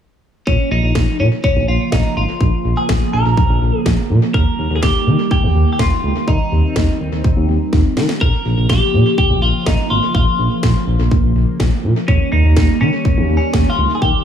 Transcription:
0.47 0.57 A#1 loud
0.47 4.30 C#3 medium
0.47 4.30 F3 medium
0.47 6.24 A#3 medium
0.47 0.71 C#4 medium
0.47 kick loud
0.71 0.81 A#1 loud
0.71 1.16 D#4 medium
0.83 0.93 A#1 loud
0.95 1.05 A#1 medium
0.95 kick loud
0.95 snare loud
1.19 1.29 A#2 medium
1.19 1.26 C#4 medium
1.44 1.68 C#4 medium
1.44 kick loud
1.56 1.65 A#1 loud
1.68 1.78 A#1 loud
1.68 1.92 F4 medium
1.92 2.02 A#1 loud
1.92 2.17 D#4 medium
1.92 kick loud
1.92 snare loud
2.16 2.26 G#1 medium
2.16 2.79 F4 medium
2.41 2.50 A#1 loud
2.41 kick loud
2.65 2.74 A#1 loud
2.77 3.11 G#4 loud
2.89 2.99 A#1 medium
2.89 kick loud
2.89 snare loud
3.13 3.23 A#1 loud
3.13 3.78 A#4 medium
3.25 3.35 A#1 loud
3.37 kick loud
3.50 3.59 A#1 medium
3.62 3.71 A#1 loud
3.78 4.06 G#4 medium
3.86 3.95 A#1 loud
3.86 kick loud
3.86 snare loud
4.10 4.20 A#2 loud
4.34 4.44 D#2 loud
4.34 8.17 D#3 medium
4.34 8.18 G3 medium
4.34 4.75 A#4 loud
4.34 kick loud
4.58 4.68 D#2 loud
4.70 4.80 D#2 loud
4.76 4.82 G#4 medium
4.83 4.92 D#2 medium
4.83 5.30 G4 medium
4.83 kick loud
4.83 snare loud
5.07 5.16 D#3 loud
5.31 5.70 G4 medium
5.31 kick loud
5.43 5.53 D#2 medium
5.55 5.65 D#2 loud
5.73 5.79 G4 medium
5.79 5.89 D#2 medium
5.79 6.28 F4 medium
5.79 kick loud
5.79 snare loud
6.03 6.13 C#2 loud
6.28 6.37 D#2 loud
6.28 8.19 C4 medium
6.28 7.93 D#4 medium
6.28 kick loud
6.52 6.61 D#2 medium
6.76 6.86 D#2 loud
6.76 kick loud
6.76 snare loud
7.00 7.10 D#2 loud
7.12 7.22 D#2 medium
7.24 kick loud
7.37 7.46 D#2 loud
7.49 7.58 D#2 loud
7.73 7.82 D#2 loud
7.73 kick loud
7.73 snare medium
7.97 8.07 D#3 loud
7.97 snare medium
8.09 snare medium
8.21 8.31 A#1 loud
8.21 12.04 C#3 medium
8.21 12.04 F3 medium
8.21 12.04 A#3 medium
8.21 8.69 A#4 loud
8.21 kick loud
8.45 8.55 A#1 loud
8.57 8.67 A#1 loud
8.69 8.79 A#1 medium
8.69 9.15 G4 loud
8.69 kick loud
8.69 snare loud
8.94 9.03 A#2 medium
9.18 9.41 G4 medium
9.18 kick loud
9.30 9.40 A#1 loud
9.42 9.52 A#1 loud
9.42 9.65 F4 medium
9.66 9.76 A#1 loud
9.66 9.91 D#4 medium
9.66 kick loud
9.66 snare loud
9.90 10.00 G#1 medium
9.90 10.13 F4 medium
10.14 10.24 A#1 loud
10.14 10.60 F4 medium
10.14 kick loud
10.39 10.48 A#1 loud
10.63 10.73 A#1 loud
10.63 kick loud
10.63 snare loud
10.87 10.97 A#1 medium
10.99 11.09 A#1 loud
11.11 kick loud
11.23 11.33 A#1 loud
11.36 11.45 A#1 loud
11.60 11.69 A#1 loud
11.60 kick loud
11.60 snare loud
11.84 11.94 A#2 loud
12.08 12.18 D#2 loud
12.08 14.24 D#3 medium
12.08 14.24 G3 medium
12.08 14.24 A#3 medium
12.08 12.32 C#4 medium
12.08 kick loud
12.32 12.42 D#2 loud
12.32 12.80 D#4 medium
12.45 12.54 D#2 loud
12.57 12.66 D#2 loud
12.57 kick loud
12.57 snare loud
12.81 12.90 D#3 loud
12.81 13.36 C#4 medium
13.05 kick loud
13.17 13.27 D#2 loud
13.29 13.39 D#2 loud
13.37 13.70 C#4 medium
13.53 13.63 D#2 medium
13.53 kick loud
13.53 snare loud
13.70 13.95 F4 medium
13.78 13.87 C#2 medium
13.95 14.02 G#4 medium
14.02 14.11 D#2 loud
14.02 14.24 G4 loud
14.02 kick loud

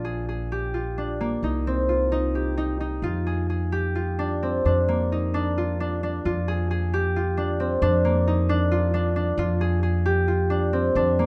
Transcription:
0.00 1.40 A#1 medium
0.00 1.20 A#3 medium
0.00 0.98 C4 medium
0.00 0.97 D4 medium
0.00 0.74 F4 medium
0.05 0.28 G#4 medium
0.29 0.58 G#4 medium
0.52 2.35 G4 medium
0.74 1.89 F4 medium
0.98 1.50 D4 medium
1.21 4.42 A#3 medium
1.43 2.99 C2 medium
1.43 2.11 D#4 medium
1.67 4.42 C4 medium
1.89 3.03 F4 medium
2.12 2.57 D#4 medium
2.35 3.33 G4 medium
2.58 2.80 D#4 medium
2.80 4.25 D#4 medium
3.02 4.62 F2 medium
3.02 3.95 F4 medium
3.27 3.49 G#4 medium
3.50 3.78 G#4 medium
3.72 6.08 G4 medium
3.95 5.57 F4 medium
4.19 4.65 D4 medium
4.43 7.43 C4 medium
4.65 6.22 F2 medium
4.65 5.18 D4 medium
4.89 8.04 A#3 medium
5.12 5.40 D#4 medium
5.34 5.80 D4 medium
5.58 6.25 F4 medium
5.80 6.03 D4 medium
6.03 7.37 D4 medium
6.25 7.79 F2 medium
6.25 7.16 F4 medium
6.48 6.70 G#4 medium
6.71 7.00 G#4 medium
6.94 9.29 G4 medium
7.16 8.71 F4 medium
7.37 7.82 D4 medium
7.60 10.60 C4 medium
7.82 9.35 F2 medium
7.82 8.34 D4 medium
8.05 11.19 A#3 medium
8.28 8.55 D#4 medium
8.49 8.93 D4 medium
8.72 9.38 F4 medium
8.94 9.16 D4 medium
9.16 10.50 D4 medium
9.38 10.93 F2 medium
9.38 10.27 F4 medium
9.61 9.82 G#4 medium
9.83 10.12 G#4 medium
10.06 11.26 G4 medium
10.28 11.26 F4 medium
10.50 10.96 D4 medium
10.73 11.26 C4 medium
10.95 11.26 F2 medium
10.95 11.26 D4 medium
11.19 11.26 A#3 medium

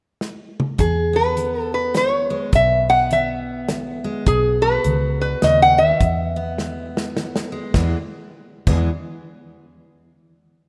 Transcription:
0.21 snare medium
0.60 mid tom medium
0.78 1.32 E2 medium
0.78 2.30 E2 medium
0.78 1.15 G#4 medium
0.78 kick medium
0.78 closed hi-hat medium
1.13 2.89 B3 medium
1.13 1.62 B4 medium
1.37 1.90 E3 medium
1.37 closed hi-hat medium
1.62 1.73 A4 medium
1.74 1.97 B4 medium
1.94 2.48 E3 medium
1.94 2.50 C#5 medium
1.94 snare medium
1.94 closed hi-hat medium
2.30 2.50 G#3 medium
2.53 4.04 B1 medium
2.53 3.06 E2 medium
2.53 2.89 E5 medium
2.53 kick loud
2.53 closed hi-hat medium
2.89 6.36 B3 medium
2.89 3.12 F#5 loud
3.11 3.64 E3 medium
3.11 4.01 E5 medium
3.11 closed hi-hat medium
3.69 4.22 E3 medium
3.69 snare medium
3.69 closed hi-hat medium
4.04 4.24 G#3 medium
4.26 4.77 B1 medium
4.26 4.80 B2 medium
4.26 4.63 G#4 medium
4.26 kick loud
4.26 closed hi-hat medium
4.62 5.98 F#4 medium
4.62 5.20 B4 medium
4.84 5.34 C#2 medium
4.84 5.38 D#3 medium
4.84 closed hi-hat medium
5.21 5.44 B4 medium
5.42 5.92 D#2 medium
5.42 5.78 C#3 medium
5.42 5.60 D#5 medium
5.42 snare medium
5.42 closed hi-hat medium
5.62 5.79 F#5 loud
5.78 6.01 D#3 medium
5.78 7.13 E5 medium
6.00 7.52 E2 medium
6.00 6.54 E2 medium
6.00 kick loud
6.00 closed hi-hat medium
6.36 7.75 B3 medium
6.58 7.12 E3 medium
6.58 snare medium
6.97 snare medium
7.17 7.70 E3 medium
7.17 snare medium
7.36 snare medium
7.52 7.72 G#3 medium
7.74 7.95 E2 medium
7.74 7.94 E2 medium
7.74 7.96 E3 medium
7.74 7.96 G#3 medium
7.74 7.96 B3 medium
7.74 7.97 G#4 soft
7.74 kick medium
7.74 snare medium
8.67 8.88 E2 medium
8.67 8.88 E3 medium
8.67 8.89 G#3 medium
8.67 8.89 B3 medium
8.67 kick loud
8.67 crash medium
8.71 8.90 G#4 medium

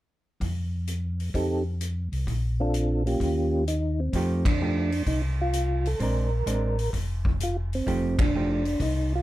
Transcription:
0.40 1.30 F2 medium
0.40 kick soft
0.40 open hi-hat soft
0.87 closed hi-hat soft
1.20 open hi-hat soft
1.34 2.09 F2 medium
1.34 1.63 C4 medium
1.34 1.63 D#4 medium
1.34 1.63 G4 soft
1.34 1.64 A4 medium
1.34 kick soft
1.34 open hi-hat soft
1.81 closed hi-hat soft
2.12 2.26 C2 medium
2.12 open hi-hat soft
2.27 3.16 A#1 medium
2.27 kick soft
2.27 open hi-hat soft
2.60 3.03 C4 medium
2.60 3.03 D4 medium
2.60 3.03 F4 medium
2.60 3.04 A4 medium
2.74 closed hi-hat soft
3.06 3.64 A#3 medium
3.06 3.64 C#4 soft
3.06 3.65 F4 soft
3.06 3.65 G4 medium
3.06 open hi-hat soft
3.20 4.09 D#2 medium
3.20 kick soft
3.20 open hi-hat soft
3.68 4.00 D#4 medium
3.68 closed hi-hat soft
4.00 4.47 C4 medium
4.13 5.02 F2 medium
4.13 4.43 F3 soft
4.13 4.43 A3 medium
4.13 4.43 D#4 medium
4.13 4.43 G4 medium
4.13 kick soft
4.13 open hi-hat soft
4.45 5.03 D4 medium
4.45 kick medium
4.45 ride medium
4.61 4.89 F3 soft
4.61 4.89 A3 soft
4.61 4.90 D#4 soft
4.61 4.90 G4 soft
4.92 open hi-hat soft
5.06 5.95 C2 medium
5.06 5.22 D#4 medium
5.06 kick soft
5.06 open hi-hat soft
5.41 5.88 F4 medium
5.53 closed hi-hat soft
5.86 6.00 A4 medium
5.86 open hi-hat soft
5.99 6.43 A#1 medium
5.99 6.29 G#3 soft
5.99 6.29 C4 medium
5.99 6.29 D4 medium
5.99 6.90 A#4 medium
5.99 kick soft
5.99 open hi-hat soft
6.46 6.89 A1 medium
6.46 6.75 G#3 soft
6.46 6.75 C4 soft
6.46 6.75 D4 soft
6.46 closed hi-hat soft
6.79 open hi-hat soft
6.93 7.82 F1 medium
6.93 kick soft
6.93 open hi-hat soft
7.25 kick soft
7.40 7.57 F4 loud
7.40 closed hi-hat soft
7.73 8.21 C4 medium
7.73 open hi-hat soft
7.86 8.75 F1 medium
7.86 8.15 F3 medium
7.86 8.15 A3 medium
7.86 8.15 D#4 medium
7.86 8.15 G4 medium
7.86 kick soft
7.86 open hi-hat soft
8.19 8.82 D4 medium
8.19 kick medium
8.19 ride medium
8.35 8.62 F3 soft
8.35 8.62 A3 medium
8.35 8.62 D#4 medium
8.35 8.63 G4 medium
8.65 open hi-hat soft
8.80 9.22 C2 medium
8.80 9.13 D#4 medium
8.80 kick soft
8.80 open hi-hat soft
9.15 9.22 F4 medium

